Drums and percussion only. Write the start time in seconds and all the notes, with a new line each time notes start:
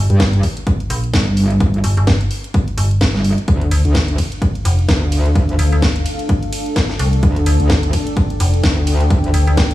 0.10 closed hi-hat
0.20 kick, snare, closed hi-hat
0.33 closed hi-hat
0.43 kick, open hi-hat
0.57 closed hi-hat
0.67 kick, closed hi-hat
0.80 closed hi-hat
0.90 open hi-hat
1.04 closed hi-hat
1.14 kick, snare, closed hi-hat
1.37 open hi-hat
1.51 closed hi-hat
1.60 kick, closed hi-hat
1.74 closed hi-hat
1.84 open hi-hat
1.97 closed hi-hat
2.07 kick, snare, closed hi-hat
2.21 closed hi-hat
2.31 open hi-hat
2.44 closed hi-hat
2.54 kick, closed hi-hat
2.68 closed hi-hat
2.78 open hi-hat
2.91 closed hi-hat
3.01 kick, snare, closed hi-hat
3.15 snare
3.24 open hi-hat
3.38 closed hi-hat
3.48 kick, closed hi-hat
3.61 closed hi-hat
3.71 open hi-hat, ride
3.85 closed hi-hat
3.95 kick, snare, closed hi-hat
4.08 closed hi-hat
4.18 kick, open hi-hat, ride
4.32 closed hi-hat
4.42 kick, closed hi-hat
4.55 closed hi-hat
4.65 open hi-hat, ride
4.79 closed hi-hat
4.89 kick, snare, closed hi-hat
5.12 open hi-hat, ride
5.26 closed hi-hat
5.35 kick, closed hi-hat
5.49 closed hi-hat
5.59 open hi-hat, ride
5.72 closed hi-hat
5.82 kick, snare, closed hi-hat
5.96 closed hi-hat
6.06 open hi-hat, ride
6.19 closed hi-hat
6.29 kick, closed hi-hat
6.43 closed hi-hat
6.53 open hi-hat, ride
6.66 closed hi-hat
6.76 kick, snare, closed hi-hat
6.90 snare
6.99 open hi-hat, ride
7.13 closed hi-hat
7.23 kick, closed hi-hat
7.36 closed hi-hat
7.46 open hi-hat, ride
7.60 closed hi-hat
7.70 kick, snare, closed hi-hat
7.83 closed hi-hat
7.93 kick, open hi-hat, ride
8.07 closed hi-hat
8.17 kick, closed hi-hat
8.30 closed hi-hat
8.40 open hi-hat, ride
8.54 closed hi-hat
8.64 kick, snare, closed hi-hat
8.87 open hi-hat, ride
9.01 closed hi-hat
9.10 kick, closed hi-hat
9.24 closed hi-hat
9.34 open hi-hat, ride
9.47 closed hi-hat
9.57 kick, snare, closed hi-hat
9.71 closed hi-hat